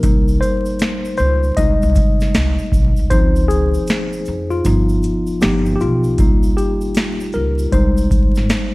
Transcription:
0.00 0.35 C2 loud
0.00 1.53 G3 medium
0.00 1.53 A#3 soft
0.00 0.44 A#4 medium
0.00 kick loud
0.00 closed hi-hat medium
0.00 shaker medium
0.04 1.54 D#4 medium
0.28 shaker medium
0.41 1.16 C5 loud
0.41 closed hi-hat soft
0.41 shaker medium
0.41 shaker soft
0.66 shaker medium
0.79 snare loud
0.79 closed hi-hat medium
0.79 shaker medium
1.05 shaker soft
1.17 1.51 C#2 medium
1.17 1.58 C5 loud
1.17 shaker soft
1.43 shaker medium
1.57 1.78 C2 loud
1.57 2.69 G3 medium
1.57 2.69 G#3 soft
1.57 2.69 D#4 medium
1.57 2.68 D#5 medium
1.57 kick medium
1.57 closed hi-hat medium
1.57 shaker medium
1.82 1.94 C2 medium
1.82 shaker soft
1.95 2.28 C3 loud
1.95 kick medium
1.95 closed hi-hat soft
1.95 shaker soft
2.20 snare soft
2.20 shaker medium
2.34 2.55 C2 loud
2.34 snare loud
2.34 closed hi-hat medium
2.34 shaker medium
2.59 shaker soft
2.72 2.93 B1 medium
2.72 kick medium
2.72 shaker medium
2.72 shaker soft
2.97 3.10 C2 medium
2.97 shaker soft
3.10 3.75 C#2 loud
3.10 4.60 F3 medium
3.10 4.61 C4 soft
3.10 4.61 D#4 medium
3.10 3.50 C5 loud
3.10 kick loud
3.10 closed hi-hat medium
3.10 shaker medium
3.36 shaker medium
3.48 4.53 G#4 loud
3.48 closed hi-hat soft
3.48 shaker medium
3.48 shaker soft
3.74 shaker medium
3.87 snare loud
3.87 closed hi-hat medium
3.87 shaker medium
4.13 shaker soft
4.25 4.59 F2 medium
4.25 shaker soft
4.50 5.44 F4 medium
4.50 shaker medium
4.65 4.97 G1 loud
4.65 5.20 F3 medium
4.65 5.20 B3 soft
4.65 5.21 D#4 medium
4.65 kick medium
4.65 closed hi-hat medium
4.65 shaker medium
4.89 shaker soft
5.02 closed hi-hat soft
5.02 shaker soft
5.04 shaker soft
5.27 shaker soft
5.41 5.74 G1 medium
5.41 6.15 F3 medium
5.41 6.15 B3 medium
5.41 6.15 D#4 medium
5.41 5.74 G4 medium
5.41 snare loud
5.41 closed hi-hat medium
5.41 shaker medium
5.66 shaker soft
5.75 5.80 G4 medium
5.80 6.13 B1 medium
5.80 6.60 F4 medium
5.80 shaker medium
5.80 shaker soft
6.04 shaker soft
6.18 6.51 C2 medium
6.18 7.30 G3 medium
6.18 7.30 A#3 soft
6.18 7.31 D#4 medium
6.18 kick loud
6.18 closed hi-hat medium
6.18 shaker medium
6.43 shaker medium
6.57 7.36 G4 medium
6.57 closed hi-hat soft
6.57 shaker medium
6.57 shaker soft
6.81 shaker medium
6.95 snare loud
6.95 closed hi-hat medium
6.95 shaker medium
7.20 shaker soft
7.32 7.66 C#2 medium
7.32 7.51 A#4 medium
7.32 shaker soft
7.59 shaker soft
7.72 8.25 C2 medium
7.72 8.27 G3 medium
7.72 8.28 G#3 medium
7.72 8.28 D#4 medium
7.72 8.74 C5 medium
7.72 kick medium
7.72 closed hi-hat medium
7.72 shaker medium
7.97 shaker medium
8.11 kick medium
8.11 closed hi-hat soft
8.11 shaker soft
8.35 8.48 G#1 medium
8.35 snare soft
8.35 shaker soft
8.50 snare loud
8.50 closed hi-hat medium
8.50 shaker medium

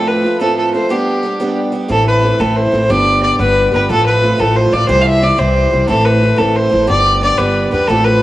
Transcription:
0.00 0.24 A2 medium
0.00 0.23 F3 medium
0.00 0.25 A3 medium
0.00 0.23 C4 medium
0.00 0.25 F4 medium
0.07 0.40 B4 medium
0.24 0.39 F3 medium
0.24 0.40 A3 medium
0.24 0.40 C4 medium
0.24 0.40 F4 medium
0.40 0.74 A2 medium
0.40 0.73 F3 medium
0.40 0.74 A3 medium
0.40 0.73 C4 medium
0.40 0.75 F4 medium
0.40 0.56 A4 medium
0.57 0.73 A4 medium
0.74 0.89 F3 medium
0.74 0.91 A3 medium
0.74 0.90 C4 medium
0.74 0.91 F4 medium
0.74 0.92 C5 medium
0.89 1.22 G3 medium
0.89 1.23 B3 medium
0.89 1.24 D4 medium
0.89 1.57 G4 medium
0.89 1.24 G4 medium
1.23 1.39 G3 medium
1.23 1.39 B3 medium
1.23 1.40 D4 medium
1.23 1.40 G4 medium
1.40 1.71 G3 medium
1.40 1.71 B3 medium
1.40 1.72 D4 medium
1.40 1.74 G4 medium
1.72 1.88 G3 medium
1.72 1.89 B3 medium
1.72 1.90 D4 medium
1.72 1.90 G4 medium
1.88 2.30 A1 medium
1.88 2.23 A2 medium
1.88 2.21 E3 medium
1.88 2.23 A3 medium
1.88 2.22 C4 medium
1.88 2.24 E4 medium
1.88 2.06 A4 loud
2.08 2.41 B4 loud
2.22 2.39 E3 medium
2.22 2.40 A3 medium
2.22 2.39 C4 medium
2.22 2.40 E4 medium
2.39 2.67 A1 medium
2.39 2.73 A2 medium
2.39 2.71 E3 medium
2.39 2.73 A3 medium
2.39 2.72 C4 medium
2.39 2.74 E4 medium
2.39 2.58 A4 medium
2.56 2.91 C5 medium
2.72 2.86 A1 medium
2.72 2.89 E3 medium
2.72 2.90 A3 medium
2.72 2.90 C4 medium
2.72 2.91 E4 medium
2.90 3.30 G1 medium
2.90 3.21 G3 medium
2.90 3.22 B3 medium
2.90 3.23 D4 medium
2.90 3.24 G4 medium
2.90 3.22 D5 loud
3.22 3.38 G3 medium
3.22 3.38 B3 medium
3.22 3.39 D4 medium
3.22 3.40 G4 medium
3.22 3.38 D5 medium
3.39 3.66 G1 medium
3.39 3.70 G3 medium
3.39 3.72 B3 medium
3.39 3.73 D4 medium
3.39 3.74 G4 medium
3.39 3.71 B4 loud
3.72 3.87 G1 medium
3.72 3.89 G3 medium
3.72 3.90 B3 medium
3.72 3.90 D4 medium
3.72 3.91 G4 medium
3.72 3.89 B4 medium
3.89 4.30 A1 medium
3.89 4.23 A2 medium
3.89 4.21 F3 medium
3.89 4.23 A3 medium
3.89 4.23 C4 medium
3.89 4.24 F4 medium
3.89 4.05 A4 loud
4.06 4.41 B4 loud
4.22 4.37 F3 medium
4.22 4.38 A3 medium
4.22 4.37 C4 medium
4.22 4.38 F4 medium
4.37 4.67 A1 medium
4.37 4.72 A2 medium
4.37 4.71 F3 medium
4.37 4.73 A3 medium
4.37 4.72 C4 medium
4.37 4.73 F4 medium
4.37 4.57 A4 loud
4.56 4.74 C5 medium
4.72 4.86 A1 medium
4.72 4.88 F3 medium
4.72 4.89 A3 medium
4.72 4.88 C4 medium
4.72 4.89 F4 medium
4.72 4.87 D5 medium
4.88 5.29 C2 loud
4.88 5.22 C3 medium
4.88 5.19 E3 medium
4.88 5.21 G3 medium
4.88 5.22 C4 medium
4.88 5.22 E4 medium
4.88 5.03 C5 loud
5.01 5.07 F5 medium
5.06 5.25 E5 loud
5.20 5.37 E3 medium
5.20 5.37 G3 medium
5.20 5.38 C4 medium
5.20 5.38 E4 medium
5.20 5.40 D5 medium
5.38 5.66 C2 medium
5.38 5.72 C3 medium
5.38 5.70 E3 medium
5.38 5.72 G3 medium
5.38 5.72 C4 medium
5.38 5.73 E4 medium
5.38 5.88 C5 medium
5.71 5.86 C2 medium
5.71 5.87 E3 medium
5.71 5.88 G3 medium
5.71 5.87 C4 medium
5.71 5.89 E4 medium
5.87 6.30 A1 medium
5.87 6.22 A2 medium
5.87 6.20 E3 medium
5.87 6.22 A3 medium
5.87 6.21 C4 medium
5.87 6.23 E4 medium
5.87 6.06 A4 loud
6.05 6.39 B4 medium
6.21 6.37 E3 medium
6.21 6.38 A3 medium
6.21 6.37 C4 medium
6.21 6.38 E4 medium
6.36 6.66 A1 medium
6.36 6.71 A2 medium
6.36 6.68 E3 medium
6.36 6.71 A3 medium
6.36 6.69 C4 medium
6.36 6.71 E4 medium
6.36 6.57 A4 medium
6.56 6.88 C5 medium
6.70 6.86 A1 medium
6.70 6.87 E3 medium
6.70 6.88 A3 medium
6.70 6.87 C4 medium
6.70 6.89 E4 medium
6.87 7.29 G1 medium
6.87 7.20 G3 medium
6.87 7.21 B3 medium
6.87 7.22 D4 medium
6.87 7.22 G4 medium
6.87 7.20 D5 loud
7.21 7.37 G3 medium
7.21 7.38 B3 medium
7.21 7.38 D4 medium
7.21 7.39 G4 medium
7.21 7.39 D5 medium
7.38 7.66 G1 medium
7.38 7.70 G3 medium
7.38 7.71 B3 medium
7.38 7.72 D4 medium
7.38 7.73 G4 medium
7.38 7.71 B4 medium
7.71 7.86 E2 medium
7.71 7.88 G3 medium
7.71 7.89 B3 medium
7.71 7.89 D4 medium
7.71 7.90 G4 medium
7.71 7.89 B4 medium
7.87 8.22 A1 medium
7.87 8.22 A2 medium
7.87 8.19 F3 medium
7.87 8.22 A3 medium
7.87 8.20 C4 medium
7.87 8.22 F4 medium
7.87 8.05 A4 loud
8.04 8.22 B4 loud

